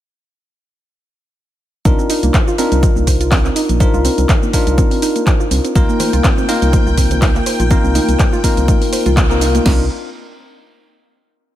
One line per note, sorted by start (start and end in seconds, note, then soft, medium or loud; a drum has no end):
1.85 1.94 C2 loud
1.85 1.90 C4 loud
1.85 2.56 D4 loud
1.85 2.56 D#4 medium
1.85 2.56 F4 medium
1.85 2.56 A#4 loud
1.85 kick loud
1.85 closed hi-hat medium
1.85 shaker soft
1.99 2.02 C4 medium
1.99 shaker soft
2.10 2.17 D#4 loud
2.10 open hi-hat loud
2.10 shaker medium
2.23 2.30 C2 medium
2.23 2.29 A#3 medium
2.23 closed hi-hat medium
2.23 shaker soft
2.34 2.41 C5 medium
2.34 kick loud
2.34 clap loud
2.34 closed hi-hat medium
2.34 shaker soft
2.47 2.54 F4 loud
2.47 shaker soft
2.58 2.63 C4 loud
2.58 3.78 D4 medium
2.58 3.78 D#4 medium
2.58 3.78 F4 medium
2.58 3.78 A#4 loud
2.58 open hi-hat loud
2.58 shaker medium
2.72 2.87 C2 medium
2.72 2.75 C4 medium
2.72 closed hi-hat medium
2.72 shaker soft
2.83 2.90 D#4 loud
2.83 kick loud
2.83 closed hi-hat medium
2.83 shaker soft
2.96 3.50 C2 medium
2.96 3.02 A#3 medium
2.96 shaker soft
3.07 3.15 C5 medium
3.07 kick medium
3.07 open hi-hat loud
3.07 shaker medium
3.21 3.27 F4 loud
3.21 closed hi-hat medium
3.21 shaker soft
3.32 3.36 C4 loud
3.32 kick loud
3.32 clap loud
3.32 open hi-hat medium
3.32 shaker soft
3.45 3.49 C4 medium
3.45 clap soft
3.45 shaker soft
3.56 3.63 D#4 loud
3.56 open hi-hat loud
3.56 shaker medium
3.69 3.84 A#1 medium
3.69 3.75 A#3 medium
3.69 closed hi-hat medium
3.69 shaker soft
3.80 4.51 D4 medium
3.80 4.51 D#4 medium
3.80 4.51 F4 medium
3.80 4.51 A#4 loud
3.80 3.88 C5 medium
3.80 kick loud
3.80 closed hi-hat medium
3.80 shaker soft
3.94 4.08 C2 loud
3.94 4.00 F4 loud
3.94 shaker soft
4.05 4.09 C4 loud
4.05 open hi-hat loud
4.05 shaker medium
4.18 4.25 C2 medium
4.18 4.22 C4 medium
4.18 closed hi-hat medium
4.18 shaker soft
4.29 4.37 D#4 loud
4.29 kick loud
4.29 clap loud
4.29 closed hi-hat medium
4.29 shaker soft
4.43 4.49 A#3 medium
4.43 shaker soft
4.53 5.73 D4 medium
4.53 5.73 D#4 medium
4.53 5.73 F4 medium
4.53 5.73 A#4 loud
4.53 4.61 C5 medium
4.53 kick medium
4.53 open hi-hat loud
4.53 shaker medium
4.67 4.82 C2 loud
4.67 4.73 F4 loud
4.67 closed hi-hat medium
4.67 shaker soft
4.78 4.82 C4 loud
4.78 kick loud
4.78 closed hi-hat medium
4.78 shaker soft
4.91 4.95 C4 medium
4.91 open hi-hat medium
4.91 shaker soft
5.02 5.10 D#4 loud
5.02 open hi-hat loud
5.02 shaker medium
5.16 5.22 A#3 medium
5.16 closed hi-hat medium
5.16 shaker soft
5.27 5.34 C5 medium
5.27 kick loud
5.27 clap loud
5.27 closed hi-hat medium
5.27 shaker soft
5.40 5.46 F4 loud
5.40 shaker soft
5.51 5.60 C2 medium
5.51 5.56 C4 loud
5.51 open hi-hat loud
5.51 shaker medium
5.64 5.68 C4 medium
5.64 closed hi-hat medium
5.64 shaker soft
5.75 5.84 C2 loud
5.75 6.46 A#3 loud
5.75 6.46 D#4 medium
5.75 5.83 D#4 loud
5.75 6.46 F4 medium
5.75 6.46 A#4 loud
5.75 9.67 G5 medium
5.75 kick loud
5.75 closed hi-hat medium
5.75 shaker soft
5.89 5.95 A#3 medium
5.89 shaker soft
5.99 6.07 C5 medium
5.99 open hi-hat loud
5.99 high conga loud
5.99 low conga medium
5.99 shaker medium
6.13 6.20 C2 medium
6.13 6.19 F4 loud
6.13 closed hi-hat medium
6.13 shaker soft
6.24 6.29 C4 loud
6.24 kick loud
6.24 clap loud
6.24 closed hi-hat medium
6.24 shaker soft
6.38 6.41 C4 medium
6.38 high conga medium
6.38 shaker soft
6.49 7.68 A#3 loud
6.49 6.56 D#4 loud
6.49 7.68 D#4 medium
6.49 7.68 F4 medium
6.49 7.68 A#4 loud
6.49 open hi-hat loud
6.49 shaker medium
6.62 6.77 C2 loud
6.62 6.68 A#3 medium
6.62 closed hi-hat medium
6.62 shaker soft
6.72 6.80 C5 medium
6.72 kick loud
6.72 closed hi-hat medium
6.72 high conga medium
6.72 shaker soft
6.86 7.40 C2 medium
6.86 6.93 F4 loud
6.86 shaker soft
6.97 7.02 C4 loud
6.97 kick medium
6.97 open hi-hat loud
6.97 shaker medium
7.10 7.14 C4 medium
7.10 closed hi-hat medium
7.10 high conga medium
7.10 low conga loud
7.10 shaker soft
7.22 7.29 D#4 loud
7.22 kick loud
7.22 clap loud
7.22 open hi-hat medium
7.22 shaker soft
7.35 7.41 A#3 medium
7.35 clap soft
7.35 shaker soft
7.46 7.54 C5 medium
7.46 open hi-hat loud
7.46 shaker medium
7.60 7.74 A#1 medium
7.60 7.66 F4 loud
7.60 closed hi-hat medium
7.60 high conga medium
7.60 shaker soft
7.71 8.41 A#3 loud
7.71 7.75 C4 loud
7.71 8.41 D#4 medium
7.71 8.41 F4 medium
7.71 8.41 A#4 loud
7.71 kick loud
7.71 closed hi-hat medium
7.71 shaker soft
7.84 7.99 C2 loud
7.84 7.88 C4 medium
7.84 shaker soft
7.95 8.02 D#4 loud
7.95 open hi-hat loud
7.95 high conga loud
7.95 low conga medium
7.95 shaker medium
8.08 8.15 C2 medium
8.08 8.14 A#3 medium
8.08 closed hi-hat medium
8.08 shaker soft
8.19 8.27 C5 medium
8.19 kick loud
8.19 clap loud
8.19 closed hi-hat medium
8.19 shaker soft
8.32 8.39 F4 loud
8.32 high conga medium
8.32 shaker soft
8.44 9.28 A#3 loud
8.44 8.48 C4 loud
8.44 9.28 D#4 medium
8.44 9.28 F4 medium
8.44 9.28 A#4 loud
8.44 kick medium
8.44 open hi-hat loud
8.44 shaker medium
8.57 8.72 C2 loud
8.57 8.61 C4 medium
8.57 closed hi-hat medium
8.57 shaker soft
8.68 8.76 D#4 medium
8.68 kick loud
8.68 closed hi-hat medium
8.68 high conga loud
8.68 shaker soft
8.82 8.88 A#3 medium
8.82 open hi-hat medium
8.82 shaker soft
8.92 9.00 C5 medium
8.92 open hi-hat loud
8.92 shaker medium
9.06 9.59 C2 loud
9.06 9.12 F4 loud
9.06 closed hi-hat medium
9.06 high conga medium
9.06 low conga medium
9.06 shaker soft
9.17 9.21 C4 loud
9.17 kick loud
9.17 clap loud
9.17 closed hi-hat medium
9.17 shaker soft
9.30 9.63 A#3 medium
9.30 9.34 C4 medium
9.30 9.63 D#4 medium
9.30 9.63 F4 medium
9.30 9.63 A#4 medium
9.30 shaker soft
9.41 9.49 D#4 loud
9.41 open hi-hat loud
9.41 shaker medium
9.55 9.61 A#3 medium
9.55 closed hi-hat medium
9.55 high conga loud
9.55 shaker soft
9.66 9.88 C2 loud
9.66 9.88 C4 medium
9.66 9.84 D4 medium
9.66 9.84 D#4 medium
9.66 9.84 F4 medium
9.66 9.84 A#4 loud
9.66 kick loud
9.66 snare loud
9.66 crash medium